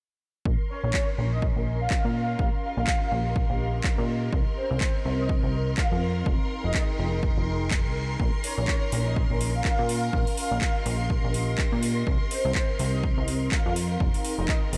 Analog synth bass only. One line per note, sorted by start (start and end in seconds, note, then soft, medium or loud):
0.46 0.57 A#1 medium
0.84 0.92 A#1 loud
1.18 1.52 A#1 medium
1.56 1.88 A#1 medium
2.05 2.36 A#2 medium
2.39 2.51 A#1 loud
2.77 2.86 A#1 medium
3.12 3.46 A#1 medium
3.50 3.81 A#1 medium
3.98 4.30 A#2 medium
4.33 4.44 C2 medium
4.71 4.79 C2 loud
5.05 5.39 C2 loud
5.43 5.75 C2 medium
5.92 6.23 F2 medium
6.26 6.38 F1 loud
6.64 6.73 F1 loud
6.99 7.33 F1 medium
7.37 7.87 F1 medium
7.85 8.17 C2 medium
8.20 8.31 A#1 medium
8.58 8.66 A#1 loud
8.92 9.26 A#1 medium
9.30 9.62 A#1 medium
9.79 10.10 A#2 medium
10.13 10.25 A#1 loud
10.51 10.60 A#1 loud
10.86 11.20 A#1 medium
11.24 11.56 A#1 medium
11.72 12.04 A#2 medium
12.07 12.18 C2 loud
12.45 12.53 C2 loud
12.79 13.14 C2 medium
13.18 13.49 C2 medium
13.66 13.97 F2 medium
14.00 14.12 F1 loud
14.39 14.47 F1 loud
14.73 14.78 F1 medium